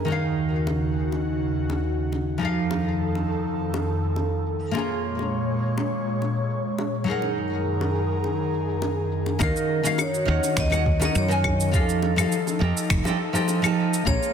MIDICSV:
0, 0, Header, 1, 6, 480
1, 0, Start_track
1, 0, Key_signature, -6, "minor"
1, 0, Tempo, 582524
1, 73, Time_signature, 4, 2, 24, 8
1, 11810, End_track
2, 0, Start_track
2, 0, Title_t, "Vibraphone"
2, 0, Program_c, 0, 11
2, 7770, Note_on_c, 0, 70, 98
2, 8248, Note_on_c, 0, 73, 92
2, 8255, Note_off_c, 0, 70, 0
2, 8734, Note_off_c, 0, 73, 0
2, 8734, Note_on_c, 0, 75, 106
2, 9097, Note_off_c, 0, 75, 0
2, 9107, Note_on_c, 0, 75, 98
2, 9208, Note_off_c, 0, 75, 0
2, 9213, Note_on_c, 0, 73, 106
2, 9650, Note_off_c, 0, 73, 0
2, 9689, Note_on_c, 0, 69, 88
2, 10608, Note_off_c, 0, 69, 0
2, 11595, Note_on_c, 0, 73, 107
2, 11810, Note_off_c, 0, 73, 0
2, 11810, End_track
3, 0, Start_track
3, 0, Title_t, "Nylon-string guitar"
3, 0, Program_c, 1, 24
3, 39, Note_on_c, 1, 51, 63
3, 53, Note_on_c, 1, 63, 59
3, 69, Note_on_c, 1, 66, 57
3, 86, Note_on_c, 1, 73, 61
3, 99, Note_on_c, 1, 77, 75
3, 1949, Note_off_c, 1, 51, 0
3, 1956, Note_off_c, 1, 63, 0
3, 1960, Note_on_c, 1, 53, 68
3, 1964, Note_off_c, 1, 66, 0
3, 1972, Note_off_c, 1, 73, 0
3, 1972, Note_on_c, 1, 63, 60
3, 1979, Note_off_c, 1, 77, 0
3, 1986, Note_on_c, 1, 67, 60
3, 2000, Note_on_c, 1, 69, 60
3, 2017, Note_on_c, 1, 77, 74
3, 3869, Note_off_c, 1, 53, 0
3, 3875, Note_off_c, 1, 63, 0
3, 3882, Note_off_c, 1, 67, 0
3, 3884, Note_on_c, 1, 58, 70
3, 3889, Note_off_c, 1, 69, 0
3, 3898, Note_off_c, 1, 77, 0
3, 3900, Note_on_c, 1, 65, 62
3, 3915, Note_on_c, 1, 68, 61
3, 3928, Note_on_c, 1, 73, 60
3, 3943, Note_on_c, 1, 82, 69
3, 5791, Note_off_c, 1, 58, 0
3, 5799, Note_off_c, 1, 65, 0
3, 5801, Note_on_c, 1, 54, 71
3, 5807, Note_off_c, 1, 68, 0
3, 5813, Note_off_c, 1, 73, 0
3, 5818, Note_on_c, 1, 63, 61
3, 5821, Note_off_c, 1, 82, 0
3, 5833, Note_on_c, 1, 68, 61
3, 5848, Note_on_c, 1, 70, 66
3, 5859, Note_on_c, 1, 78, 74
3, 7710, Note_off_c, 1, 54, 0
3, 7718, Note_off_c, 1, 63, 0
3, 7726, Note_off_c, 1, 68, 0
3, 7733, Note_off_c, 1, 70, 0
3, 7735, Note_on_c, 1, 51, 88
3, 7739, Note_off_c, 1, 78, 0
3, 7739, Note_on_c, 1, 63, 80
3, 7747, Note_on_c, 1, 66, 81
3, 7757, Note_on_c, 1, 73, 76
3, 7763, Note_on_c, 1, 77, 96
3, 8081, Note_off_c, 1, 51, 0
3, 8083, Note_off_c, 1, 63, 0
3, 8087, Note_off_c, 1, 66, 0
3, 8092, Note_off_c, 1, 73, 0
3, 8095, Note_off_c, 1, 77, 0
3, 8103, Note_on_c, 1, 51, 91
3, 8109, Note_on_c, 1, 63, 90
3, 8116, Note_on_c, 1, 66, 85
3, 8126, Note_on_c, 1, 73, 92
3, 8130, Note_on_c, 1, 77, 106
3, 8245, Note_off_c, 1, 51, 0
3, 8248, Note_off_c, 1, 63, 0
3, 8251, Note_off_c, 1, 66, 0
3, 8257, Note_off_c, 1, 73, 0
3, 8259, Note_off_c, 1, 77, 0
3, 8449, Note_on_c, 1, 51, 78
3, 8457, Note_on_c, 1, 63, 69
3, 8467, Note_on_c, 1, 66, 68
3, 8472, Note_on_c, 1, 73, 69
3, 8478, Note_on_c, 1, 78, 87
3, 8798, Note_off_c, 1, 51, 0
3, 8802, Note_off_c, 1, 63, 0
3, 8807, Note_off_c, 1, 66, 0
3, 8810, Note_off_c, 1, 73, 0
3, 8813, Note_off_c, 1, 78, 0
3, 8816, Note_on_c, 1, 51, 96
3, 8823, Note_on_c, 1, 63, 86
3, 8829, Note_on_c, 1, 66, 83
3, 8836, Note_on_c, 1, 73, 83
3, 8846, Note_on_c, 1, 78, 107
3, 8910, Note_off_c, 1, 51, 0
3, 8913, Note_off_c, 1, 63, 0
3, 8916, Note_off_c, 1, 66, 0
3, 8920, Note_off_c, 1, 73, 0
3, 8925, Note_off_c, 1, 78, 0
3, 9060, Note_on_c, 1, 51, 94
3, 9067, Note_on_c, 1, 63, 85
3, 9073, Note_on_c, 1, 66, 89
3, 9082, Note_on_c, 1, 73, 87
3, 9089, Note_on_c, 1, 78, 100
3, 9280, Note_off_c, 1, 51, 0
3, 9283, Note_off_c, 1, 63, 0
3, 9286, Note_off_c, 1, 66, 0
3, 9291, Note_off_c, 1, 73, 0
3, 9294, Note_off_c, 1, 78, 0
3, 9297, Note_on_c, 1, 51, 108
3, 9304, Note_on_c, 1, 63, 95
3, 9310, Note_on_c, 1, 66, 89
3, 9320, Note_on_c, 1, 73, 89
3, 9327, Note_on_c, 1, 80, 115
3, 9634, Note_off_c, 1, 51, 0
3, 9637, Note_off_c, 1, 63, 0
3, 9640, Note_off_c, 1, 66, 0
3, 9645, Note_off_c, 1, 73, 0
3, 9648, Note_off_c, 1, 80, 0
3, 9653, Note_on_c, 1, 53, 82
3, 9657, Note_on_c, 1, 63, 77
3, 9665, Note_on_c, 1, 67, 77
3, 9674, Note_on_c, 1, 69, 78
3, 9680, Note_on_c, 1, 77, 89
3, 10000, Note_off_c, 1, 53, 0
3, 10003, Note_off_c, 1, 63, 0
3, 10006, Note_off_c, 1, 67, 0
3, 10011, Note_off_c, 1, 69, 0
3, 10014, Note_off_c, 1, 77, 0
3, 10021, Note_on_c, 1, 53, 99
3, 10031, Note_on_c, 1, 63, 84
3, 10038, Note_on_c, 1, 67, 88
3, 10045, Note_on_c, 1, 69, 87
3, 10053, Note_on_c, 1, 77, 105
3, 10164, Note_off_c, 1, 53, 0
3, 10169, Note_off_c, 1, 63, 0
3, 10172, Note_off_c, 1, 67, 0
3, 10176, Note_off_c, 1, 69, 0
3, 10180, Note_off_c, 1, 77, 0
3, 10375, Note_on_c, 1, 53, 79
3, 10384, Note_on_c, 1, 63, 73
3, 10391, Note_on_c, 1, 67, 72
3, 10399, Note_on_c, 1, 69, 67
3, 10406, Note_on_c, 1, 79, 92
3, 10721, Note_off_c, 1, 53, 0
3, 10726, Note_off_c, 1, 63, 0
3, 10729, Note_off_c, 1, 67, 0
3, 10733, Note_off_c, 1, 69, 0
3, 10737, Note_off_c, 1, 79, 0
3, 10745, Note_on_c, 1, 53, 90
3, 10753, Note_on_c, 1, 63, 85
3, 10761, Note_on_c, 1, 67, 88
3, 10767, Note_on_c, 1, 69, 88
3, 10778, Note_on_c, 1, 79, 107
3, 10834, Note_off_c, 1, 53, 0
3, 10838, Note_off_c, 1, 63, 0
3, 10842, Note_off_c, 1, 67, 0
3, 10845, Note_off_c, 1, 69, 0
3, 10851, Note_off_c, 1, 79, 0
3, 10982, Note_on_c, 1, 53, 93
3, 10991, Note_on_c, 1, 63, 89
3, 10998, Note_on_c, 1, 67, 84
3, 11007, Note_on_c, 1, 69, 83
3, 11012, Note_on_c, 1, 79, 104
3, 11201, Note_off_c, 1, 53, 0
3, 11205, Note_off_c, 1, 63, 0
3, 11209, Note_off_c, 1, 67, 0
3, 11213, Note_off_c, 1, 69, 0
3, 11215, Note_off_c, 1, 79, 0
3, 11223, Note_on_c, 1, 53, 104
3, 11233, Note_on_c, 1, 63, 97
3, 11240, Note_on_c, 1, 67, 95
3, 11245, Note_on_c, 1, 69, 92
3, 11255, Note_on_c, 1, 81, 116
3, 11556, Note_off_c, 1, 53, 0
3, 11561, Note_off_c, 1, 63, 0
3, 11565, Note_off_c, 1, 67, 0
3, 11567, Note_off_c, 1, 69, 0
3, 11572, Note_off_c, 1, 81, 0
3, 11577, Note_on_c, 1, 58, 82
3, 11585, Note_on_c, 1, 65, 78
3, 11591, Note_on_c, 1, 68, 76
3, 11599, Note_on_c, 1, 73, 78
3, 11606, Note_on_c, 1, 82, 93
3, 11810, Note_off_c, 1, 58, 0
3, 11810, Note_off_c, 1, 65, 0
3, 11810, Note_off_c, 1, 68, 0
3, 11810, Note_off_c, 1, 73, 0
3, 11810, Note_off_c, 1, 82, 0
3, 11810, End_track
4, 0, Start_track
4, 0, Title_t, "Analog synth pad"
4, 0, Program_c, 2, 89
4, 71, Note_on_c, 2, 49, 67
4, 74, Note_on_c, 2, 39, 80
4, 76, Note_on_c, 2, 66, 88
4, 1972, Note_off_c, 2, 49, 0
4, 1974, Note_off_c, 2, 39, 0
4, 1975, Note_off_c, 2, 66, 0
4, 1983, Note_on_c, 2, 51, 66
4, 1986, Note_on_c, 2, 41, 76
4, 1986, Note_on_c, 2, 69, 84
4, 3888, Note_off_c, 2, 51, 0
4, 3890, Note_off_c, 2, 41, 0
4, 3890, Note_off_c, 2, 69, 0
4, 3913, Note_on_c, 2, 46, 80
4, 3916, Note_on_c, 2, 56, 67
4, 3919, Note_on_c, 2, 73, 81
4, 5813, Note_off_c, 2, 46, 0
4, 5815, Note_off_c, 2, 56, 0
4, 5816, Note_off_c, 2, 73, 0
4, 5827, Note_on_c, 2, 70, 87
4, 5831, Note_on_c, 2, 51, 70
4, 5832, Note_on_c, 2, 42, 82
4, 5832, Note_on_c, 2, 68, 71
4, 7730, Note_off_c, 2, 70, 0
4, 7732, Note_off_c, 2, 51, 0
4, 7733, Note_off_c, 2, 42, 0
4, 7733, Note_off_c, 2, 68, 0
4, 7747, Note_on_c, 2, 61, 71
4, 7748, Note_on_c, 2, 51, 84
4, 7751, Note_on_c, 2, 66, 91
4, 9650, Note_off_c, 2, 61, 0
4, 9651, Note_off_c, 2, 51, 0
4, 9652, Note_off_c, 2, 66, 0
4, 9676, Note_on_c, 2, 69, 90
4, 9679, Note_on_c, 2, 63, 78
4, 9680, Note_on_c, 2, 53, 83
4, 11575, Note_off_c, 2, 69, 0
4, 11577, Note_off_c, 2, 53, 0
4, 11577, Note_off_c, 2, 63, 0
4, 11602, Note_on_c, 2, 56, 82
4, 11602, Note_on_c, 2, 58, 74
4, 11602, Note_on_c, 2, 61, 94
4, 11810, Note_off_c, 2, 56, 0
4, 11810, Note_off_c, 2, 58, 0
4, 11810, Note_off_c, 2, 61, 0
4, 11810, End_track
5, 0, Start_track
5, 0, Title_t, "Fretless electric bass"
5, 0, Program_c, 3, 35
5, 7751, Note_on_c, 3, 39, 94
5, 7834, Note_off_c, 3, 39, 0
5, 8472, Note_on_c, 3, 39, 85
5, 8554, Note_off_c, 3, 39, 0
5, 8710, Note_on_c, 3, 39, 77
5, 9127, Note_off_c, 3, 39, 0
5, 9190, Note_on_c, 3, 42, 99
5, 9672, Note_off_c, 3, 42, 0
5, 9672, Note_on_c, 3, 41, 94
5, 10088, Note_off_c, 3, 41, 0
5, 10393, Note_on_c, 3, 41, 82
5, 10475, Note_off_c, 3, 41, 0
5, 10632, Note_on_c, 3, 29, 82
5, 10715, Note_off_c, 3, 29, 0
5, 11590, Note_on_c, 3, 34, 83
5, 11674, Note_off_c, 3, 34, 0
5, 11810, End_track
6, 0, Start_track
6, 0, Title_t, "Drums"
6, 68, Note_on_c, 9, 60, 43
6, 151, Note_off_c, 9, 60, 0
6, 310, Note_on_c, 9, 69, 69
6, 393, Note_off_c, 9, 69, 0
6, 552, Note_on_c, 9, 60, 62
6, 634, Note_off_c, 9, 60, 0
6, 790, Note_on_c, 9, 69, 72
6, 872, Note_off_c, 9, 69, 0
6, 926, Note_on_c, 9, 60, 43
6, 1008, Note_off_c, 9, 60, 0
6, 1034, Note_on_c, 9, 69, 27
6, 1116, Note_off_c, 9, 69, 0
6, 1273, Note_on_c, 9, 69, 69
6, 1355, Note_off_c, 9, 69, 0
6, 1398, Note_on_c, 9, 60, 62
6, 1481, Note_off_c, 9, 60, 0
6, 1517, Note_on_c, 9, 69, 29
6, 1599, Note_off_c, 9, 69, 0
6, 1750, Note_on_c, 9, 60, 44
6, 1755, Note_on_c, 9, 69, 70
6, 1833, Note_off_c, 9, 60, 0
6, 1837, Note_off_c, 9, 69, 0
6, 1882, Note_on_c, 9, 69, 39
6, 1965, Note_off_c, 9, 69, 0
6, 2231, Note_on_c, 9, 60, 67
6, 2313, Note_off_c, 9, 60, 0
6, 2362, Note_on_c, 9, 69, 38
6, 2445, Note_off_c, 9, 69, 0
6, 2472, Note_on_c, 9, 69, 27
6, 2554, Note_off_c, 9, 69, 0
6, 2598, Note_on_c, 9, 60, 45
6, 2681, Note_off_c, 9, 60, 0
6, 2711, Note_on_c, 9, 69, 65
6, 2794, Note_off_c, 9, 69, 0
6, 2842, Note_on_c, 9, 69, 35
6, 2925, Note_off_c, 9, 69, 0
6, 2956, Note_on_c, 9, 69, 30
6, 3039, Note_off_c, 9, 69, 0
6, 3081, Note_on_c, 9, 60, 69
6, 3163, Note_off_c, 9, 60, 0
6, 3194, Note_on_c, 9, 69, 71
6, 3276, Note_off_c, 9, 69, 0
6, 3323, Note_on_c, 9, 69, 40
6, 3405, Note_off_c, 9, 69, 0
6, 3430, Note_on_c, 9, 60, 46
6, 3436, Note_on_c, 9, 69, 28
6, 3512, Note_off_c, 9, 60, 0
6, 3519, Note_off_c, 9, 69, 0
6, 3675, Note_on_c, 9, 69, 66
6, 3758, Note_off_c, 9, 69, 0
6, 3805, Note_on_c, 9, 69, 37
6, 3887, Note_off_c, 9, 69, 0
6, 3914, Note_on_c, 9, 60, 62
6, 3996, Note_off_c, 9, 60, 0
6, 4157, Note_on_c, 9, 69, 65
6, 4239, Note_off_c, 9, 69, 0
6, 4278, Note_on_c, 9, 60, 40
6, 4284, Note_on_c, 9, 69, 35
6, 4360, Note_off_c, 9, 60, 0
6, 4367, Note_off_c, 9, 69, 0
6, 4396, Note_on_c, 9, 69, 27
6, 4478, Note_off_c, 9, 69, 0
6, 4635, Note_on_c, 9, 69, 64
6, 4717, Note_off_c, 9, 69, 0
6, 4760, Note_on_c, 9, 60, 66
6, 4766, Note_on_c, 9, 69, 37
6, 4842, Note_off_c, 9, 60, 0
6, 4848, Note_off_c, 9, 69, 0
6, 4875, Note_on_c, 9, 69, 27
6, 4958, Note_off_c, 9, 69, 0
6, 5115, Note_on_c, 9, 69, 69
6, 5124, Note_on_c, 9, 60, 43
6, 5197, Note_off_c, 9, 69, 0
6, 5207, Note_off_c, 9, 60, 0
6, 5243, Note_on_c, 9, 69, 37
6, 5326, Note_off_c, 9, 69, 0
6, 5356, Note_on_c, 9, 69, 28
6, 5438, Note_off_c, 9, 69, 0
6, 5591, Note_on_c, 9, 60, 68
6, 5594, Note_on_c, 9, 69, 66
6, 5673, Note_off_c, 9, 60, 0
6, 5677, Note_off_c, 9, 69, 0
6, 5721, Note_on_c, 9, 69, 38
6, 5803, Note_off_c, 9, 69, 0
6, 5951, Note_on_c, 9, 60, 44
6, 6033, Note_off_c, 9, 60, 0
6, 6074, Note_on_c, 9, 69, 70
6, 6156, Note_off_c, 9, 69, 0
6, 6204, Note_on_c, 9, 69, 37
6, 6286, Note_off_c, 9, 69, 0
6, 6314, Note_on_c, 9, 69, 27
6, 6396, Note_off_c, 9, 69, 0
6, 6436, Note_on_c, 9, 60, 68
6, 6519, Note_off_c, 9, 60, 0
6, 6552, Note_on_c, 9, 69, 69
6, 6635, Note_off_c, 9, 69, 0
6, 6684, Note_on_c, 9, 69, 38
6, 6767, Note_off_c, 9, 69, 0
6, 6789, Note_on_c, 9, 60, 39
6, 6799, Note_on_c, 9, 69, 29
6, 6872, Note_off_c, 9, 60, 0
6, 6881, Note_off_c, 9, 69, 0
6, 7034, Note_on_c, 9, 69, 67
6, 7116, Note_off_c, 9, 69, 0
6, 7161, Note_on_c, 9, 69, 39
6, 7244, Note_off_c, 9, 69, 0
6, 7267, Note_on_c, 9, 60, 65
6, 7273, Note_on_c, 9, 69, 28
6, 7350, Note_off_c, 9, 60, 0
6, 7355, Note_off_c, 9, 69, 0
6, 7512, Note_on_c, 9, 69, 67
6, 7595, Note_off_c, 9, 69, 0
6, 7633, Note_on_c, 9, 60, 47
6, 7643, Note_on_c, 9, 69, 37
6, 7715, Note_off_c, 9, 60, 0
6, 7726, Note_off_c, 9, 69, 0
6, 7746, Note_on_c, 9, 60, 53
6, 7752, Note_on_c, 9, 36, 122
6, 7753, Note_on_c, 9, 69, 53
6, 7828, Note_off_c, 9, 60, 0
6, 7834, Note_off_c, 9, 36, 0
6, 7835, Note_off_c, 9, 69, 0
6, 7881, Note_on_c, 9, 69, 33
6, 7964, Note_off_c, 9, 69, 0
6, 8120, Note_on_c, 9, 69, 65
6, 8202, Note_off_c, 9, 69, 0
6, 8225, Note_on_c, 9, 60, 72
6, 8230, Note_on_c, 9, 75, 77
6, 8233, Note_on_c, 9, 69, 52
6, 8307, Note_off_c, 9, 60, 0
6, 8313, Note_off_c, 9, 75, 0
6, 8316, Note_off_c, 9, 69, 0
6, 8359, Note_on_c, 9, 69, 34
6, 8441, Note_off_c, 9, 69, 0
6, 8600, Note_on_c, 9, 69, 64
6, 8601, Note_on_c, 9, 60, 50
6, 8683, Note_off_c, 9, 69, 0
6, 8684, Note_off_c, 9, 60, 0
6, 8707, Note_on_c, 9, 26, 76
6, 8710, Note_on_c, 9, 36, 103
6, 8711, Note_on_c, 9, 69, 58
6, 8790, Note_off_c, 9, 26, 0
6, 8792, Note_off_c, 9, 36, 0
6, 8793, Note_off_c, 9, 69, 0
6, 8835, Note_on_c, 9, 75, 78
6, 8838, Note_on_c, 9, 69, 33
6, 8917, Note_off_c, 9, 75, 0
6, 8921, Note_off_c, 9, 69, 0
6, 8950, Note_on_c, 9, 36, 100
6, 9033, Note_off_c, 9, 36, 0
6, 9078, Note_on_c, 9, 69, 68
6, 9079, Note_on_c, 9, 60, 83
6, 9161, Note_off_c, 9, 60, 0
6, 9161, Note_off_c, 9, 69, 0
6, 9190, Note_on_c, 9, 69, 53
6, 9272, Note_off_c, 9, 69, 0
6, 9320, Note_on_c, 9, 69, 30
6, 9403, Note_off_c, 9, 69, 0
6, 9428, Note_on_c, 9, 60, 57
6, 9428, Note_on_c, 9, 75, 79
6, 9432, Note_on_c, 9, 36, 53
6, 9510, Note_off_c, 9, 60, 0
6, 9510, Note_off_c, 9, 75, 0
6, 9514, Note_off_c, 9, 36, 0
6, 9561, Note_on_c, 9, 69, 67
6, 9644, Note_off_c, 9, 69, 0
6, 9671, Note_on_c, 9, 36, 112
6, 9671, Note_on_c, 9, 69, 56
6, 9754, Note_off_c, 9, 36, 0
6, 9754, Note_off_c, 9, 69, 0
6, 9800, Note_on_c, 9, 69, 35
6, 9883, Note_off_c, 9, 69, 0
6, 9908, Note_on_c, 9, 60, 68
6, 9991, Note_off_c, 9, 60, 0
6, 10037, Note_on_c, 9, 75, 80
6, 10041, Note_on_c, 9, 69, 69
6, 10120, Note_off_c, 9, 75, 0
6, 10123, Note_off_c, 9, 69, 0
6, 10152, Note_on_c, 9, 69, 58
6, 10234, Note_off_c, 9, 69, 0
6, 10276, Note_on_c, 9, 60, 56
6, 10282, Note_on_c, 9, 69, 34
6, 10358, Note_off_c, 9, 60, 0
6, 10364, Note_off_c, 9, 69, 0
6, 10525, Note_on_c, 9, 69, 68
6, 10607, Note_off_c, 9, 69, 0
6, 10631, Note_on_c, 9, 26, 80
6, 10631, Note_on_c, 9, 75, 77
6, 10632, Note_on_c, 9, 36, 124
6, 10634, Note_on_c, 9, 69, 56
6, 10713, Note_off_c, 9, 26, 0
6, 10713, Note_off_c, 9, 75, 0
6, 10714, Note_off_c, 9, 36, 0
6, 10716, Note_off_c, 9, 69, 0
6, 10755, Note_on_c, 9, 60, 78
6, 10766, Note_on_c, 9, 69, 34
6, 10837, Note_off_c, 9, 60, 0
6, 10848, Note_off_c, 9, 69, 0
6, 11003, Note_on_c, 9, 69, 66
6, 11085, Note_off_c, 9, 69, 0
6, 11106, Note_on_c, 9, 60, 53
6, 11112, Note_on_c, 9, 69, 56
6, 11189, Note_off_c, 9, 60, 0
6, 11194, Note_off_c, 9, 69, 0
6, 11238, Note_on_c, 9, 75, 81
6, 11241, Note_on_c, 9, 69, 34
6, 11321, Note_off_c, 9, 75, 0
6, 11324, Note_off_c, 9, 69, 0
6, 11484, Note_on_c, 9, 69, 73
6, 11567, Note_off_c, 9, 69, 0
6, 11592, Note_on_c, 9, 36, 127
6, 11592, Note_on_c, 9, 60, 75
6, 11596, Note_on_c, 9, 69, 57
6, 11674, Note_off_c, 9, 36, 0
6, 11674, Note_off_c, 9, 60, 0
6, 11678, Note_off_c, 9, 69, 0
6, 11724, Note_on_c, 9, 69, 34
6, 11806, Note_off_c, 9, 69, 0
6, 11810, End_track
0, 0, End_of_file